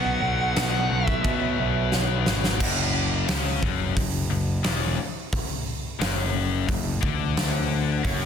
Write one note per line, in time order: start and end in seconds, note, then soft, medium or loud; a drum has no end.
0.00 0.20 B1 medium
0.00 1.21 B2 medium
0.00 1.22 F#3 medium
0.00 1.23 B3 loud
0.00 1.07 F#5 loud
0.22 0.53 B1 medium
0.56 0.88 B1 medium
0.56 snare loud
0.56 crash medium
0.91 1.22 B1 medium
1.07 1.90 E5 loud
1.07 kick medium
1.23 2.57 B2 medium
1.23 1.55 B2 medium
1.23 2.58 F#3 medium
1.23 2.59 B3 medium
1.23 kick loud
1.23 crash medium
1.60 1.90 B1 medium
1.92 2.24 B1 medium
1.92 snare medium
2.26 2.58 G#1 medium
2.26 snare medium
2.44 snare medium
2.59 3.24 F#1 medium
2.59 3.27 F#2 loud
2.59 kick loud
2.59 crash loud
3.27 3.60 C#2 medium
3.27 3.60 C#3 loud
3.27 snare loud
3.27 open hi-hat medium
3.62 3.94 F#1 medium
3.62 3.95 F#2 loud
3.62 kick loud
3.96 4.28 F#1 medium
3.96 4.23 F#2 medium
3.96 kick loud
3.96 open hi-hat medium
4.30 4.62 F#1 medium
4.30 4.57 F#2 medium
4.64 4.96 E1 loud
4.64 4.97 E2 loud
4.64 snare loud
4.64 open hi-hat medium
5.32 kick loud
5.32 open hi-hat medium
5.99 6.64 F#1 medium
5.99 6.67 F#2 loud
5.99 snare loud
5.99 open hi-hat medium
6.68 7.00 F#1 medium
6.68 6.95 F#2 medium
6.68 kick medium
6.68 open hi-hat medium
7.01 8.01 D2 medium
7.01 8.03 D3 loud
7.01 kick loud
7.37 snare loud
7.37 open hi-hat medium
8.03 8.26 F#1 loud
8.03 8.26 F#2 loud
8.03 kick loud
8.03 open hi-hat medium